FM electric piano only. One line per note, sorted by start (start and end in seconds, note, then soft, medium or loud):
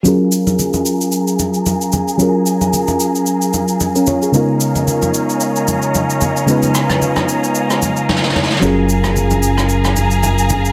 0.03 2.15 F#3 medium
0.03 2.15 C#4 medium
0.03 2.16 F4 medium
0.03 2.16 G#4 medium
0.08 2.17 A#4 medium
2.17 4.29 F#3 medium
2.17 3.50 C#4 medium
2.17 3.51 F4 medium
2.17 3.52 G#4 medium
2.22 3.52 A#4 medium
3.95 4.07 C#4 medium
3.95 4.07 A#4 medium
4.08 4.22 F4 medium
4.08 4.21 C#5 medium
4.22 4.48 G#4 medium
4.32 6.43 C#3 medium
4.32 6.44 G#3 medium
4.32 6.44 B3 medium
4.32 6.45 D#4 medium
4.36 6.45 F4 medium
4.36 6.46 A#4 medium
6.46 8.57 C#3 medium
6.46 8.58 G#3 medium
6.46 8.58 B3 medium
6.46 8.59 D#4 medium
6.50 8.59 F4 medium
6.50 8.60 B4 medium
8.60 10.72 F#3 medium
8.60 10.72 C#4 medium
8.60 10.72 F4 medium
8.60 10.72 G#4 medium
8.65 10.72 A#4 medium